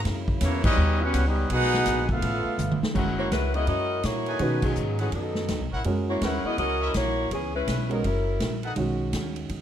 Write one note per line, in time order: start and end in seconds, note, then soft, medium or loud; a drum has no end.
0.00 1.48 C#3 medium
0.05 0.40 F#2 loud
0.05 0.77 F#3 medium
0.05 0.77 A#3 medium
0.05 0.77 E4 medium
0.05 kick soft
0.05 snare soft
0.05 ride medium
0.28 kick medium
0.41 0.76 E2 loud
0.41 0.62 E3 medium
0.41 0.62 A#3 medium
0.41 0.63 A#3 medium
0.41 0.62 C#4 medium
0.41 0.63 E4 medium
0.41 0.63 F#4 medium
0.41 0.63 C#5 loud
0.41 kick soft
0.41 snare soft
0.41 hi-hat pedal medium
0.41 ride medium
0.64 0.99 G3 medium
0.64 0.99 B3 medium
0.64 0.99 C#4 loud
0.64 0.99 D#4 medium
0.64 0.99 G4 loud
0.64 0.99 B4 loud
0.64 0.99 D#5 loud
0.64 kick loud
0.64 crash loud
0.77 1.12 D#2 loud
0.77 1.50 G3 medium
0.77 2.93 B3 medium
0.77 1.50 D#4 medium
1.02 1.25 B3 loud
1.02 1.26 C#4 loud
1.02 1.26 F#4 loud
1.02 1.26 G4 loud
1.02 1.26 B4 loud
1.02 1.26 F#5 loud
1.14 1.49 C#2 medium
1.14 kick soft
1.14 hi-hat pedal medium
1.14 ride medium
1.27 1.49 G3 medium
1.27 1.49 B3 medium
1.27 1.49 C#4 medium
1.27 1.49 D#4 medium
1.27 1.49 G4 medium
1.27 1.49 B4 medium
1.27 1.49 D#5 medium
1.49 1.85 B1 medium
1.49 2.21 D#3 medium
1.49 2.21 G#3 medium
1.49 2.05 B3 loud
1.49 2.06 D#4 loud
1.49 2.21 F#4 medium
1.49 2.05 F#4 loud
1.49 2.06 G#4 loud
1.49 2.06 B4 loud
1.49 2.06 F#5 loud
1.49 kick soft
1.49 ride medium
1.62 snare soft
1.74 snare soft
1.86 2.21 A#1 medium
1.86 kick soft
1.86 snare soft
1.86 hi-hat pedal medium
1.86 ride medium
2.09 2.78 A3 medium
2.09 2.78 B3 medium
2.09 2.78 F4 medium
2.09 2.78 A4 medium
2.09 2.79 E5 medium
2.09 2.78 F5 loud
2.09 kick medium
2.21 2.43 A1 medium
2.21 2.94 C#3 medium
2.21 2.94 A3 medium
2.21 2.93 F4 medium
2.21 kick soft
2.21 ride medium
2.44 muted upright bass stroke soft
2.58 2.79 G1 medium
2.58 hi-hat pedal medium
2.58 mid tom medium
2.71 mid tom medium
2.81 muted upright bass stroke soft
2.81 snare medium
2.94 3.30 F#1 medium
2.94 3.95 G#3 medium
2.94 3.96 C#4 medium
2.94 3.49 E4 medium
2.94 3.96 F#4 medium
2.94 3.49 A#4 medium
2.94 3.96 A#4 medium
2.94 3.49 C#5 medium
2.94 3.49 F#5 loud
2.94 kick medium
2.94 crash medium
3.18 3.30 A#3 medium
3.18 3.30 E4 medium
3.18 3.31 F#4 medium
3.18 3.31 C#5 loud
3.31 3.66 C#2 medium
3.31 3.53 G#3 medium
3.31 3.53 C#4 medium
3.31 3.53 E4 medium
3.31 3.53 B4 medium
3.31 kick soft
3.31 snare medium
3.31 hi-hat pedal medium
3.31 ride medium
3.53 3.68 B3 medium
3.53 4.01 E4 medium
3.53 3.68 E4 medium
3.53 3.68 G#4 medium
3.53 4.01 A#4 medium
3.53 4.01 C#5 medium
3.53 3.67 D#5 loud
3.53 4.01 F#5 medium
3.53 ride soft
3.67 4.02 F#2 medium
3.67 4.02 C#4 medium
3.67 4.02 F#4 medium
3.67 4.02 A#4 medium
3.67 4.02 D#5 loud
3.67 kick soft
3.67 ride medium
4.03 4.39 A#2 medium
4.03 4.41 A#3 medium
4.03 4.41 E4 medium
4.03 4.40 F#4 medium
4.03 4.41 C#5 loud
4.03 kick soft
4.03 snare medium
4.03 hi-hat pedal medium
4.03 ride medium
4.26 4.74 D#4 loud
4.26 4.74 A4 medium
4.26 4.74 B4 medium
4.26 4.74 G#5 loud
4.26 ride soft
4.39 4.75 B2 medium
4.39 5.41 D#3 medium
4.39 4.63 A3 medium
4.39 5.41 C#4 medium
4.39 4.63 D#4 medium
4.39 5.42 F#4 medium
4.39 4.63 F#4 medium
4.39 5.41 G#4 soft
4.39 4.63 B4 medium
4.39 kick soft
4.39 ride medium
4.62 5.00 F#3 medium
4.62 5.00 B3 medium
4.62 5.00 D#4 medium
4.62 5.00 G#4 medium
4.62 kick medium
4.62 crash medium
4.76 5.11 G#2 medium
4.76 hi-hat pedal medium
4.99 5.13 E3 medium
4.99 5.13 A3 medium
4.99 5.13 C#4 medium
4.99 5.08 D#4 medium
4.99 5.13 G#4 medium
4.99 5.08 A4 medium
4.99 5.08 B4 medium
4.99 5.08 F#5 medium
4.99 ride soft
5.12 5.48 F#2 loud
5.12 5.69 F#3 medium
5.12 5.69 B3 medium
5.12 5.69 D#4 medium
5.12 5.69 A4 medium
5.12 kick soft
5.12 ride medium
5.35 snare medium
5.48 5.60 D#2 medium
5.48 kick soft
5.48 snare medium
5.48 hi-hat pedal medium
5.48 ride medium
5.60 5.72 B1 medium
5.71 5.84 A1 medium
5.71 5.81 E4 medium
5.71 5.81 A#4 medium
5.71 5.81 C#5 medium
5.71 5.81 F#5 loud
5.84 6.20 F#2 medium
5.84 6.86 G#3 medium
5.84 6.87 C#4 medium
5.84 6.87 F#4 medium
5.84 6.87 A#4 medium
5.84 kick soft
5.84 ride medium
6.10 6.22 A#3 medium
6.10 6.22 E4 medium
6.10 6.22 F#4 medium
6.10 6.22 C#5 medium
6.21 6.43 D#2 medium
6.21 6.45 G#3 medium
6.21 6.46 C#4 medium
6.21 6.77 E4 medium
6.21 6.44 E4 medium
6.21 6.77 A#4 medium
6.21 6.46 B4 medium
6.21 6.77 C#5 medium
6.21 6.77 F#5 loud
6.21 kick soft
6.21 snare medium
6.21 hi-hat pedal medium
6.21 ride medium
6.44 6.59 B3 medium
6.44 6.59 E4 medium
6.44 6.59 G#4 medium
6.44 6.58 D#5 loud
6.44 muted upright bass stroke soft
6.58 6.93 C#2 medium
6.58 6.93 C#4 medium
6.58 6.93 F#4 medium
6.58 6.93 A#4 medium
6.58 6.93 D#5 loud
6.58 kick soft
6.58 ride medium
6.81 6.90 E4 loud
6.81 6.90 A#4 medium
6.81 6.90 C#5 medium
6.81 6.90 E5 loud
6.94 7.30 A#1 medium
6.94 7.32 A#3 medium
6.94 7.32 E4 medium
6.94 7.32 F#4 medium
6.94 7.32 C#5 loud
6.94 kick soft
6.94 snare medium
6.94 hi-hat pedal medium
6.94 ride medium
7.31 7.66 C#2 medium
7.31 7.53 E3 medium
7.31 7.53 B3 medium
7.31 7.53 C#4 medium
7.31 7.53 G#4 medium
7.31 kick soft
7.31 ride medium
7.56 7.89 G#3 medium
7.56 7.89 C#4 medium
7.56 7.89 E4 medium
7.56 7.89 B4 loud
7.67 8.03 B1 medium
7.67 kick soft
7.67 snare medium
7.67 hi-hat pedal medium
7.67 ride medium
7.89 8.05 F#3 medium
7.89 8.02 G#3 medium
7.89 8.05 B3 medium
7.89 8.02 C#4 medium
7.89 8.05 D#4 medium
7.89 8.03 F#4 medium
7.89 8.03 A#4 medium
7.89 8.05 A#4 medium
7.89 ride soft
8.04 8.39 F#1 medium
8.04 8.60 F#3 medium
8.04 8.60 C#4 medium
8.04 8.60 E4 medium
8.04 8.60 A#4 medium
8.04 kick soft
8.04 ride medium
8.40 8.75 A#1 medium
8.40 kick soft
8.40 snare medium
8.40 hi-hat pedal soft
8.40 ride medium
8.63 8.73 D#4 loud
8.63 8.72 A4 medium
8.63 8.73 B4 medium
8.63 8.73 F#5 loud
8.63 ride soft
8.76 9.12 B1 medium
8.76 9.61 D#3 medium
8.76 9.61 G#3 medium
8.76 9.61 C#4 medium
8.76 9.61 F#4 medium
8.76 kick soft
8.76 ride medium
9.13 9.48 D#2 medium
9.13 kick soft
9.13 snare medium
9.13 hi-hat pedal medium
9.13 ride medium
9.36 ride soft
9.49 9.61 F#2 medium
9.49 kick soft
9.49 ride medium